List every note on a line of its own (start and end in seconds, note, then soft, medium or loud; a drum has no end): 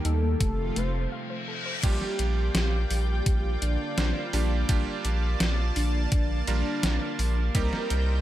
0.00 0.39 D#3 medium
0.00 0.37 G3 medium
0.00 0.39 A#3 medium
0.00 0.37 G4 medium
0.05 0.35 D#2 medium
0.05 0.20 D#4 loud
0.05 0.78 A4 medium
0.05 closed hi-hat medium
0.23 0.38 A#3 medium
0.40 0.71 F1 medium
0.40 1.11 C3 medium
0.40 1.11 F3 medium
0.40 1.11 A3 medium
0.40 0.56 A3 loud
0.40 1.11 F4 medium
0.40 kick loud
0.40 closed hi-hat medium
0.40 reverse cymbal medium
0.76 1.07 F1 medium
0.76 0.85 A3 loud
0.76 1.12 C5 medium
0.76 closed hi-hat medium
0.94 1.09 A4 medium
1.12 1.29 F5 loud
1.30 1.47 C5 medium
1.48 1.65 A4 medium
1.66 1.75 C5 loud
1.83 1.99 A#1 loud
1.83 3.93 G3 medium
1.83 8.21 A#3 medium
1.83 3.94 A#3 medium
1.83 3.93 D4 medium
1.83 7.51 F4 medium
1.83 3.93 F4 medium
1.83 2.76 G4 loud
1.83 3.93 G4 loud
1.83 7.51 D5 medium
1.83 4.66 G5 medium
1.83 kick loud
1.83 closed hi-hat loud
1.83 crash loud
2.01 snare soft
2.19 2.50 A#1 loud
2.19 closed hi-hat medium
2.55 2.85 A#1 loud
2.55 snare loud
2.55 closed hi-hat medium
2.90 3.21 A#1 medium
2.90 3.52 G4 loud
2.90 open hi-hat medium
3.26 3.57 A#1 medium
3.26 kick loud
3.26 closed hi-hat loud
3.62 3.77 A#1 loud
3.62 4.24 D4 medium
3.62 closed hi-hat medium
3.98 4.13 A#1 medium
3.98 4.29 G3 medium
3.98 4.29 A#3 medium
3.98 4.29 D4 medium
3.98 4.29 F4 medium
3.98 4.29 C5 medium
3.98 snare loud
3.98 closed hi-hat loud
4.33 4.64 A#1 loud
4.33 4.65 G3 medium
4.33 4.65 A#3 medium
4.33 4.95 D4 medium
4.33 4.65 D4 medium
4.33 4.65 F4 medium
4.33 4.65 G4 loud
4.33 open hi-hat medium
4.69 4.84 A#1 loud
4.69 6.43 G3 loud
4.69 6.43 A#3 medium
4.69 6.43 D4 medium
4.69 6.43 F4 medium
4.69 6.43 G4 loud
4.69 7.52 A5 medium
4.69 kick loud
4.69 closed hi-hat loud
5.05 5.35 A#1 medium
5.05 closed hi-hat medium
5.40 5.71 A#1 loud
5.40 snare loud
5.40 closed hi-hat loud
5.76 6.07 A#1 medium
5.76 6.38 D4 loud
5.76 open hi-hat medium
6.12 6.42 A#1 medium
6.12 kick loud
6.12 closed hi-hat loud
6.47 6.63 A#1 loud
6.47 7.51 G3 medium
6.47 7.51 A#3 medium
6.47 7.41 D4 loud
6.47 7.51 D4 medium
6.47 7.51 F4 medium
6.47 7.51 A#4 loud
6.47 closed hi-hat medium
6.83 6.99 A#1 medium
6.83 snare loud
6.83 closed hi-hat loud
7.19 7.50 A#1 loud
7.19 open hi-hat medium
7.55 7.70 C2 loud
7.55 8.21 G3 loud
7.55 8.21 A#3 medium
7.55 8.21 C4 medium
7.55 8.21 D#4 medium
7.55 8.21 G4 loud
7.55 8.21 A#4 loud
7.55 8.21 C5 medium
7.55 8.21 G5 medium
7.55 kick loud
7.55 closed hi-hat loud
7.73 snare soft
7.90 8.21 C2 loud
7.90 closed hi-hat medium